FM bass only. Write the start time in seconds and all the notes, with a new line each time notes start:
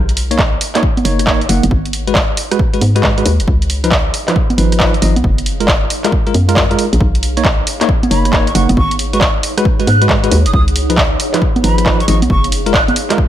Already playing: B1
1.05 F#1
1.49 F#1
1.63 F#1
1.71 G#1
2.82 G#2
3.26 D#2
3.40 F#1
3.48 C#2
4.58 G#1
5.02 G#1
5.16 B1
5.24 F#1
6.35 F#2
6.93 A#1
7.01 B1
8.11 F#1
8.55 F#1
8.69 F#1
8.77 G#1
9.87 G#2
10.32 D#2
10.46 F#1
10.54 C#2
11.64 G#1
12.08 G#1
12.22 B1
12.30 F#1